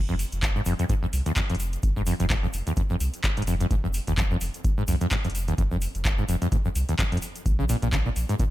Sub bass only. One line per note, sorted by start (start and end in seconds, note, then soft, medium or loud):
0.00 0.25 F1 medium
0.32 0.60 F1 medium
0.66 0.75 F1 medium
1.13 1.22 C2 medium
1.50 1.77 F1 medium
1.83 2.12 F1 medium
2.20 2.48 F1 medium
2.54 2.62 F1 medium
3.00 3.09 C2 loud
3.37 3.65 F1 medium
3.71 4.00 F1 loud
4.07 4.35 F1 medium
4.41 4.50 F1 medium
4.88 4.97 C2 loud
5.25 5.53 F1 medium
5.58 5.87 F1 loud
5.95 6.23 F1 medium
6.29 6.37 F1 medium
6.75 6.84 C2 loud
7.12 7.19 F1 medium
7.46 7.75 A#1 loud
7.82 8.10 A#1 medium
8.16 8.25 A#1 medium